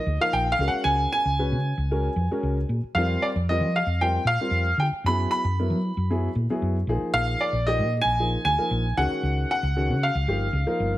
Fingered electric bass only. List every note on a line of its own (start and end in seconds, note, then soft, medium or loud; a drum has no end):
0.06 0.17 D2 medium
0.33 0.53 A#1 medium
0.59 0.69 C#2 medium
0.85 1.05 C#2 medium
1.25 1.53 C#2 medium
1.52 1.72 C#3 medium
1.78 2.08 C#2 medium
2.16 2.27 F2 medium
2.31 muted fingered electric bass stroke soft
2.43 2.63 C#2 medium
2.69 2.80 A#2 medium
2.83 muted fingered electric bass stroke soft
2.95 3.15 F2 medium
3.35 3.62 F2 medium
3.61 3.81 F3 medium
3.86 4.17 F2 medium
4.25 4.36 A#2 medium
4.38 muted fingered electric bass stroke soft
4.51 4.72 F2 medium
4.78 4.89 D3 medium
4.91 muted fingered electric bass stroke soft
5.04 5.25 F#2 medium
5.44 5.72 F#2 medium
5.70 5.91 F#3 medium
5.97 6.27 F#2 medium
6.35 6.46 A#2 medium
6.49 muted fingered electric bass stroke soft
6.62 6.82 F#2 medium
6.87 6.98 A#1 medium
7.01 muted fingered electric bass stroke soft
7.13 7.34 A#1 medium
7.53 7.81 A#1 medium
7.79 8.00 A#2 medium
8.05 8.35 A#1 medium
8.45 8.55 D2 medium
8.71 8.91 A#1 medium
8.97 9.08 C#2 medium
9.11 muted fingered electric bass stroke soft
9.23 9.43 C#2 medium
9.63 9.91 C#2 medium
9.89 10.09 C#3 medium
10.15 10.25 C#2 medium
10.27 10.47 G1 medium
10.53 10.64 C#2 medium
10.80 10.98 G1 medium